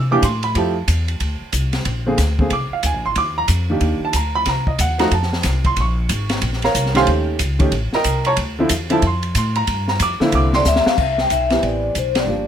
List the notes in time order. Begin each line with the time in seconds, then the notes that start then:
Already playing: C3 E6
0.11 E3 A#3 D4 G4 D6
0.23 A2 C6, kick, hi-hat pedal, ride
0.43 B5, ride
0.55 F2 F3 A3 E4 G4 A5, kick, ride
0.88 E2, kick, hi-hat pedal, ride
1.08 ride
1.20 D2, kick, ride
1.41 muted upright bass stroke
1.52 C2, kick, hi-hat pedal, ride
1.73 snare, ride
1.85 A#1, kick, ride
2.06 D3 A#3 C4 G#4
2.18 D2, kick, snare, hi-hat pedal, ride
2.39 D3 A#3 C4 G#4, kick
2.50 C2 D6, kick, ride
2.70 F5, muted upright bass stroke
2.83 D2 G#5, kick, hi-hat pedal, ride
2.94 A#1
3.05 G#1 C6
3.16 D#2 D6, kick, ride
3.38 A#5
3.48 F2, kick, hi-hat pedal, ride
3.70 D#3 A#3 D4 G4
3.81 D#2, kick, ride
4.00 muted upright bass stroke
4.05 A5
4.13 D2 A#5, kick, hi-hat pedal, ride
4.35 B5
4.46 C2 A#5, kick, snare, ride
4.67 D#5, kick
4.79 D#2 F#5, kick, hi-hat pedal, ride
4.98 F3 A3 D#4 F#4 A#5, snare, ride
5.11 F2 A5, kick, ride
5.22 snare
5.33 snare
5.43 C2, kick, snare, hi-hat pedal, ride
5.64 C6, kick, ride
5.76 A#1, kick, ride
5.81 C#6
6.09 G#1, kick, hi-hat pedal, ride
6.29 snare, ride
6.42 A#1, kick, ride
6.53 snare
6.62 A#4 C#5 F5 A#5, snare, ride
6.75 C2, kick, hi-hat pedal, ride
6.86 snare
6.94 D#3 A3 C#4 G4 C5 F5 G#5 C6, snare, ride
7.07 D#2, kick, ride
7.39 C#2, kick, hi-hat pedal, ride
7.59 D#3 A3 C#4 G4, kick, ride
7.72 A1, kick, ride
7.93 A#4 D#5 G5 A#5, muted upright bass stroke, snare
8.04 C2, kick, hi-hat pedal, ride
8.25 C#5 A5 A#5 C#6, ride
8.37 D2, kick, ride
8.59 D3 F3 C4 E4
8.69 E2, kick, hi-hat pedal, ride
8.90 D3 F3 C4 E4 A5, ride
9.02 F2, kick, ride
9.06 C6
9.23 ride
9.35 A2 C6, kick, hi-hat pedal, ride
9.55 A#5, ride
9.67 G2, kick, ride
9.88 A#5, snare
10.00 F2 D6, kick, hi-hat pedal, ride
10.20 D3 A#3 C4 E4, muted upright bass stroke, snare
10.32 C2 D6, kick, ride
10.53 D5 C6, snare
10.65 D2 E5, snare, hi-hat pedal
10.76 snare
10.86 F5, muted upright bass stroke, snare
10.98 C2 E5, kick, crash
11.18 G5, snare
11.30 B1 E5, kick, hi-hat pedal, ride
11.50 E3 B3 C4 G4, snare, ride
11.63 A1 D5, kick, ride
11.95 B1 C5, kick, hi-hat pedal, ride
12.15 D5, snare, ride
12.27 G1 F3 A#3 D4 G4